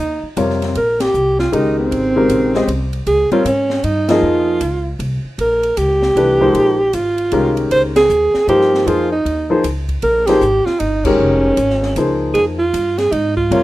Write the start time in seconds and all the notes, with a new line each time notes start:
Already playing: D#2 D#4
0.23 muted upright bass stroke
0.37 F2 C3 G3 F4 A#4 C#5, hi-hat pedal, ride
0.50 snare
0.62 snare, ride
0.75 A#1 A#4, ride
1.00 G4, snare, ride
1.14 C2, hi-hat pedal
1.39 F4, snare
1.52 C#2 C#3 D#3 G#3 D#4 G4 A#4, ride
1.79 C4
1.91 G#1, ride
2.16 C#3 D#3 G#3 G4 A#4
2.29 A#1, hi-hat pedal, ride
2.54 G#3 C#4 G4 C5 D#5, snare
2.67 C2, ride
2.93 ride
3.07 C#2 G#4, ride
3.31 G3 C4 F4 A#4 C#5, muted upright bass stroke, ride
3.45 G#2 C#4, hi-hat pedal, ride
3.70 snare
3.84 G2 D#4, ride
4.08 F3 A#3 D#4 F4 G#4 D#5, snare, ride
4.22 F2
4.61 C#2, hi-hat pedal, ride
4.99 C2, ride
5.24 muted upright bass stroke
5.38 A#1 A#4, ride
5.63 ride
5.77 C#2 G4, hi-hat pedal, ride
6.02 snare
6.15 C2 E3 A3 D4 G4 B4, ride
6.40 F3 G#3 A#3 D#4 C5
6.54 A#1, ride
6.93 G#1 F4, hi-hat pedal, ride
7.18 ride
7.32 C2 D#3 G#3 C#4 G4 A#4, ride
7.57 ride
7.71 C#2 C5, ride
7.96 G#4, snare, ride
8.09 D#2, hi-hat pedal
8.34 muted upright bass stroke, snare
8.47 G2 F3 A#3 D#4 G4 A#4 C5, ride
8.61 snare
8.74 snare
8.86 F2 F3 A#3 D#4 F4 G#4 C5, ride
9.12 D#4
9.25 D#2, ride
9.50 F3 A#3 D#4 G#4 C5
9.64 C#2, hi-hat pedal, ride
9.89 kick, ride
10.02 A#1 A#4, ride
10.27 F3 A#3 D#4 G4 G#4 C5, snare, ride
10.41 G#1, hi-hat pedal
10.65 F4, muted upright bass stroke, snare
10.80 G1 D#4, ride
11.05 D#3 G#3 C#4 G4 A#4, kick, crash
11.19 F1
11.57 G#1, hi-hat pedal, ride
11.70 snare
11.83 snare
11.96 C#2 F3 A#3 D#4 G#4 C5, hi-hat pedal, ride
12.34 F2 G#4, ride
12.59 F4
12.74 G2, hi-hat pedal, ride
12.98 G#4, snare, ride
13.12 G#2 D#4, ride
13.37 F4, kick
13.51 F2 C3 G3 F4 A#4 C#5, ride